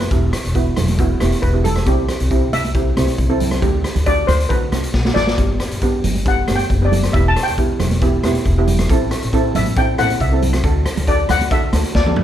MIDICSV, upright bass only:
0, 0, Header, 1, 2, 480
1, 0, Start_track
1, 0, Tempo, 438276
1, 124, Time_signature, 4, 2, 24, 8
1, 13403, End_track
2, 0, Start_track
2, 0, Title_t, "Upright bass"
2, 0, Program_c, 0, 32
2, 123, Note_on_c, 0, 28, 87
2, 336, Note_off_c, 0, 28, 0
2, 489, Note_on_c, 0, 28, 77
2, 805, Note_off_c, 0, 28, 0
2, 846, Note_on_c, 0, 28, 76
2, 1271, Note_off_c, 0, 28, 0
2, 1328, Note_on_c, 0, 28, 90
2, 1436, Note_off_c, 0, 28, 0
2, 1567, Note_on_c, 0, 28, 85
2, 1993, Note_off_c, 0, 28, 0
2, 2043, Note_on_c, 0, 36, 87
2, 2258, Note_off_c, 0, 36, 0
2, 2413, Note_on_c, 0, 36, 79
2, 2730, Note_off_c, 0, 36, 0
2, 2769, Note_on_c, 0, 36, 78
2, 3195, Note_off_c, 0, 36, 0
2, 3249, Note_on_c, 0, 36, 94
2, 3360, Note_off_c, 0, 36, 0
2, 3489, Note_on_c, 0, 36, 85
2, 3917, Note_off_c, 0, 36, 0
2, 3968, Note_on_c, 0, 38, 90
2, 4184, Note_off_c, 0, 38, 0
2, 4329, Note_on_c, 0, 38, 78
2, 4650, Note_off_c, 0, 38, 0
2, 4683, Note_on_c, 0, 38, 81
2, 4902, Note_off_c, 0, 38, 0
2, 4932, Note_on_c, 0, 38, 92
2, 5147, Note_off_c, 0, 38, 0
2, 5163, Note_on_c, 0, 36, 75
2, 5386, Note_off_c, 0, 36, 0
2, 5410, Note_on_c, 0, 35, 79
2, 5630, Note_off_c, 0, 35, 0
2, 5645, Note_on_c, 0, 33, 74
2, 5868, Note_off_c, 0, 33, 0
2, 5892, Note_on_c, 0, 31, 89
2, 6108, Note_off_c, 0, 31, 0
2, 6254, Note_on_c, 0, 31, 77
2, 6575, Note_off_c, 0, 31, 0
2, 6615, Note_on_c, 0, 31, 80
2, 7043, Note_off_c, 0, 31, 0
2, 7101, Note_on_c, 0, 31, 89
2, 7211, Note_off_c, 0, 31, 0
2, 7338, Note_on_c, 0, 30, 88
2, 7765, Note_off_c, 0, 30, 0
2, 7821, Note_on_c, 0, 28, 89
2, 8034, Note_off_c, 0, 28, 0
2, 8188, Note_on_c, 0, 28, 75
2, 8503, Note_off_c, 0, 28, 0
2, 8542, Note_on_c, 0, 28, 80
2, 8967, Note_off_c, 0, 28, 0
2, 9027, Note_on_c, 0, 28, 92
2, 9134, Note_off_c, 0, 28, 0
2, 9260, Note_on_c, 0, 28, 91
2, 9685, Note_off_c, 0, 28, 0
2, 9742, Note_on_c, 0, 33, 93
2, 9954, Note_off_c, 0, 33, 0
2, 10105, Note_on_c, 0, 33, 85
2, 10420, Note_off_c, 0, 33, 0
2, 10462, Note_on_c, 0, 33, 85
2, 10885, Note_off_c, 0, 33, 0
2, 10939, Note_on_c, 0, 33, 96
2, 11047, Note_off_c, 0, 33, 0
2, 11174, Note_on_c, 0, 36, 91
2, 11599, Note_off_c, 0, 36, 0
2, 11652, Note_on_c, 0, 38, 96
2, 11865, Note_off_c, 0, 38, 0
2, 12014, Note_on_c, 0, 38, 82
2, 12329, Note_off_c, 0, 38, 0
2, 12369, Note_on_c, 0, 38, 88
2, 12793, Note_off_c, 0, 38, 0
2, 12843, Note_on_c, 0, 38, 98
2, 12954, Note_off_c, 0, 38, 0
2, 13088, Note_on_c, 0, 38, 93
2, 13403, Note_off_c, 0, 38, 0
2, 13403, End_track
0, 0, End_of_file